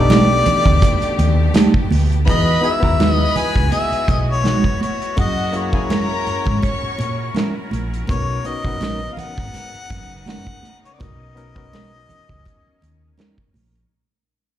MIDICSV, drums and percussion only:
0, 0, Header, 1, 2, 480
1, 0, Start_track
1, 0, Key_signature, 5, "major"
1, 0, Tempo, 727273
1, 1500, Time_signature, 4, 2, 24, 8
1, 9629, End_track
2, 0, Start_track
2, 0, Title_t, "Drums"
2, 66, Note_on_c, 9, 63, 69
2, 67, Note_on_c, 9, 42, 74
2, 73, Note_on_c, 9, 38, 104
2, 132, Note_off_c, 9, 63, 0
2, 133, Note_off_c, 9, 42, 0
2, 139, Note_off_c, 9, 38, 0
2, 302, Note_on_c, 9, 42, 73
2, 306, Note_on_c, 9, 64, 77
2, 368, Note_off_c, 9, 42, 0
2, 372, Note_off_c, 9, 64, 0
2, 433, Note_on_c, 9, 36, 76
2, 433, Note_on_c, 9, 64, 74
2, 499, Note_off_c, 9, 36, 0
2, 499, Note_off_c, 9, 64, 0
2, 541, Note_on_c, 9, 42, 88
2, 543, Note_on_c, 9, 36, 91
2, 547, Note_on_c, 9, 38, 33
2, 550, Note_on_c, 9, 62, 54
2, 607, Note_off_c, 9, 42, 0
2, 609, Note_off_c, 9, 36, 0
2, 613, Note_off_c, 9, 38, 0
2, 616, Note_off_c, 9, 62, 0
2, 672, Note_on_c, 9, 42, 54
2, 738, Note_off_c, 9, 42, 0
2, 785, Note_on_c, 9, 42, 71
2, 789, Note_on_c, 9, 62, 54
2, 851, Note_off_c, 9, 42, 0
2, 855, Note_off_c, 9, 62, 0
2, 1017, Note_on_c, 9, 63, 73
2, 1019, Note_on_c, 9, 42, 82
2, 1027, Note_on_c, 9, 38, 110
2, 1083, Note_off_c, 9, 63, 0
2, 1085, Note_off_c, 9, 42, 0
2, 1093, Note_off_c, 9, 38, 0
2, 1149, Note_on_c, 9, 36, 80
2, 1215, Note_off_c, 9, 36, 0
2, 1258, Note_on_c, 9, 63, 64
2, 1268, Note_on_c, 9, 46, 76
2, 1324, Note_off_c, 9, 63, 0
2, 1334, Note_off_c, 9, 46, 0
2, 1399, Note_on_c, 9, 42, 48
2, 1465, Note_off_c, 9, 42, 0
2, 1502, Note_on_c, 9, 36, 109
2, 1502, Note_on_c, 9, 42, 87
2, 1505, Note_on_c, 9, 62, 50
2, 1568, Note_off_c, 9, 36, 0
2, 1568, Note_off_c, 9, 42, 0
2, 1571, Note_off_c, 9, 62, 0
2, 1740, Note_on_c, 9, 42, 61
2, 1806, Note_off_c, 9, 42, 0
2, 1866, Note_on_c, 9, 36, 86
2, 1932, Note_off_c, 9, 36, 0
2, 1981, Note_on_c, 9, 42, 69
2, 1981, Note_on_c, 9, 63, 73
2, 1987, Note_on_c, 9, 38, 104
2, 2047, Note_off_c, 9, 42, 0
2, 2047, Note_off_c, 9, 63, 0
2, 2053, Note_off_c, 9, 38, 0
2, 2216, Note_on_c, 9, 64, 81
2, 2218, Note_on_c, 9, 42, 76
2, 2282, Note_off_c, 9, 64, 0
2, 2284, Note_off_c, 9, 42, 0
2, 2347, Note_on_c, 9, 36, 93
2, 2413, Note_off_c, 9, 36, 0
2, 2454, Note_on_c, 9, 42, 78
2, 2455, Note_on_c, 9, 62, 59
2, 2520, Note_off_c, 9, 42, 0
2, 2521, Note_off_c, 9, 62, 0
2, 2591, Note_on_c, 9, 42, 55
2, 2657, Note_off_c, 9, 42, 0
2, 2693, Note_on_c, 9, 36, 95
2, 2698, Note_on_c, 9, 62, 53
2, 2698, Note_on_c, 9, 64, 75
2, 2699, Note_on_c, 9, 42, 66
2, 2759, Note_off_c, 9, 36, 0
2, 2764, Note_off_c, 9, 62, 0
2, 2764, Note_off_c, 9, 64, 0
2, 2765, Note_off_c, 9, 42, 0
2, 2930, Note_on_c, 9, 63, 80
2, 2938, Note_on_c, 9, 42, 75
2, 2946, Note_on_c, 9, 38, 106
2, 2996, Note_off_c, 9, 63, 0
2, 3004, Note_off_c, 9, 42, 0
2, 3012, Note_off_c, 9, 38, 0
2, 3064, Note_on_c, 9, 36, 83
2, 3130, Note_off_c, 9, 36, 0
2, 3173, Note_on_c, 9, 63, 70
2, 3187, Note_on_c, 9, 42, 72
2, 3239, Note_off_c, 9, 63, 0
2, 3253, Note_off_c, 9, 42, 0
2, 3312, Note_on_c, 9, 42, 49
2, 3378, Note_off_c, 9, 42, 0
2, 3411, Note_on_c, 9, 62, 47
2, 3416, Note_on_c, 9, 42, 82
2, 3417, Note_on_c, 9, 36, 122
2, 3477, Note_off_c, 9, 62, 0
2, 3482, Note_off_c, 9, 42, 0
2, 3483, Note_off_c, 9, 36, 0
2, 3652, Note_on_c, 9, 42, 67
2, 3657, Note_on_c, 9, 62, 29
2, 3718, Note_off_c, 9, 42, 0
2, 3723, Note_off_c, 9, 62, 0
2, 3781, Note_on_c, 9, 36, 91
2, 3847, Note_off_c, 9, 36, 0
2, 3895, Note_on_c, 9, 42, 81
2, 3896, Note_on_c, 9, 63, 66
2, 3901, Note_on_c, 9, 38, 106
2, 3961, Note_off_c, 9, 42, 0
2, 3962, Note_off_c, 9, 63, 0
2, 3967, Note_off_c, 9, 38, 0
2, 4136, Note_on_c, 9, 42, 70
2, 4202, Note_off_c, 9, 42, 0
2, 4261, Note_on_c, 9, 64, 69
2, 4268, Note_on_c, 9, 36, 93
2, 4327, Note_off_c, 9, 64, 0
2, 4334, Note_off_c, 9, 36, 0
2, 4373, Note_on_c, 9, 62, 61
2, 4378, Note_on_c, 9, 36, 87
2, 4379, Note_on_c, 9, 42, 73
2, 4385, Note_on_c, 9, 38, 34
2, 4439, Note_off_c, 9, 62, 0
2, 4444, Note_off_c, 9, 36, 0
2, 4445, Note_off_c, 9, 42, 0
2, 4451, Note_off_c, 9, 38, 0
2, 4610, Note_on_c, 9, 62, 53
2, 4623, Note_on_c, 9, 42, 74
2, 4676, Note_off_c, 9, 62, 0
2, 4689, Note_off_c, 9, 42, 0
2, 4848, Note_on_c, 9, 63, 76
2, 4858, Note_on_c, 9, 42, 73
2, 4866, Note_on_c, 9, 38, 105
2, 4914, Note_off_c, 9, 63, 0
2, 4924, Note_off_c, 9, 42, 0
2, 4932, Note_off_c, 9, 38, 0
2, 5090, Note_on_c, 9, 63, 67
2, 5104, Note_on_c, 9, 42, 69
2, 5156, Note_off_c, 9, 63, 0
2, 5170, Note_off_c, 9, 42, 0
2, 5238, Note_on_c, 9, 42, 54
2, 5304, Note_off_c, 9, 42, 0
2, 5329, Note_on_c, 9, 62, 51
2, 5340, Note_on_c, 9, 36, 111
2, 5342, Note_on_c, 9, 42, 87
2, 5395, Note_off_c, 9, 62, 0
2, 5406, Note_off_c, 9, 36, 0
2, 5408, Note_off_c, 9, 42, 0
2, 5574, Note_on_c, 9, 62, 33
2, 5578, Note_on_c, 9, 42, 69
2, 5640, Note_off_c, 9, 62, 0
2, 5644, Note_off_c, 9, 42, 0
2, 5706, Note_on_c, 9, 36, 91
2, 5772, Note_off_c, 9, 36, 0
2, 5813, Note_on_c, 9, 63, 67
2, 5820, Note_on_c, 9, 42, 83
2, 5826, Note_on_c, 9, 38, 100
2, 5879, Note_off_c, 9, 63, 0
2, 5886, Note_off_c, 9, 42, 0
2, 5892, Note_off_c, 9, 38, 0
2, 6053, Note_on_c, 9, 64, 73
2, 6062, Note_on_c, 9, 42, 72
2, 6119, Note_off_c, 9, 64, 0
2, 6128, Note_off_c, 9, 42, 0
2, 6189, Note_on_c, 9, 36, 91
2, 6255, Note_off_c, 9, 36, 0
2, 6296, Note_on_c, 9, 62, 51
2, 6301, Note_on_c, 9, 42, 78
2, 6307, Note_on_c, 9, 38, 38
2, 6362, Note_off_c, 9, 62, 0
2, 6367, Note_off_c, 9, 42, 0
2, 6373, Note_off_c, 9, 38, 0
2, 6431, Note_on_c, 9, 42, 54
2, 6497, Note_off_c, 9, 42, 0
2, 6535, Note_on_c, 9, 62, 53
2, 6535, Note_on_c, 9, 64, 73
2, 6536, Note_on_c, 9, 36, 92
2, 6544, Note_on_c, 9, 42, 62
2, 6601, Note_off_c, 9, 62, 0
2, 6601, Note_off_c, 9, 64, 0
2, 6602, Note_off_c, 9, 36, 0
2, 6610, Note_off_c, 9, 42, 0
2, 6773, Note_on_c, 9, 63, 80
2, 6782, Note_on_c, 9, 42, 80
2, 6790, Note_on_c, 9, 38, 109
2, 6839, Note_off_c, 9, 63, 0
2, 6848, Note_off_c, 9, 42, 0
2, 6856, Note_off_c, 9, 38, 0
2, 6909, Note_on_c, 9, 36, 81
2, 6975, Note_off_c, 9, 36, 0
2, 7016, Note_on_c, 9, 63, 64
2, 7031, Note_on_c, 9, 42, 71
2, 7082, Note_off_c, 9, 63, 0
2, 7097, Note_off_c, 9, 42, 0
2, 7163, Note_on_c, 9, 42, 56
2, 7229, Note_off_c, 9, 42, 0
2, 7259, Note_on_c, 9, 62, 51
2, 7265, Note_on_c, 9, 36, 122
2, 7268, Note_on_c, 9, 42, 76
2, 7325, Note_off_c, 9, 62, 0
2, 7331, Note_off_c, 9, 36, 0
2, 7334, Note_off_c, 9, 42, 0
2, 7503, Note_on_c, 9, 42, 67
2, 7507, Note_on_c, 9, 62, 35
2, 7569, Note_off_c, 9, 42, 0
2, 7573, Note_off_c, 9, 62, 0
2, 7630, Note_on_c, 9, 36, 95
2, 7696, Note_off_c, 9, 36, 0
2, 7744, Note_on_c, 9, 63, 72
2, 7747, Note_on_c, 9, 42, 80
2, 7753, Note_on_c, 9, 38, 105
2, 7810, Note_off_c, 9, 63, 0
2, 7813, Note_off_c, 9, 42, 0
2, 7819, Note_off_c, 9, 38, 0
2, 7981, Note_on_c, 9, 64, 74
2, 7986, Note_on_c, 9, 42, 64
2, 8047, Note_off_c, 9, 64, 0
2, 8052, Note_off_c, 9, 42, 0
2, 8110, Note_on_c, 9, 64, 65
2, 8114, Note_on_c, 9, 36, 88
2, 8176, Note_off_c, 9, 64, 0
2, 8180, Note_off_c, 9, 36, 0
2, 8219, Note_on_c, 9, 62, 55
2, 8225, Note_on_c, 9, 36, 90
2, 8225, Note_on_c, 9, 42, 78
2, 8285, Note_off_c, 9, 62, 0
2, 8291, Note_off_c, 9, 36, 0
2, 8291, Note_off_c, 9, 42, 0
2, 8462, Note_on_c, 9, 62, 53
2, 8471, Note_on_c, 9, 42, 65
2, 8528, Note_off_c, 9, 62, 0
2, 8537, Note_off_c, 9, 42, 0
2, 8696, Note_on_c, 9, 63, 81
2, 8703, Note_on_c, 9, 42, 73
2, 8712, Note_on_c, 9, 38, 105
2, 8762, Note_off_c, 9, 63, 0
2, 8769, Note_off_c, 9, 42, 0
2, 8778, Note_off_c, 9, 38, 0
2, 8831, Note_on_c, 9, 36, 87
2, 8897, Note_off_c, 9, 36, 0
2, 8937, Note_on_c, 9, 63, 66
2, 8945, Note_on_c, 9, 46, 68
2, 9003, Note_off_c, 9, 63, 0
2, 9011, Note_off_c, 9, 46, 0
2, 9078, Note_on_c, 9, 42, 47
2, 9144, Note_off_c, 9, 42, 0
2, 9629, End_track
0, 0, End_of_file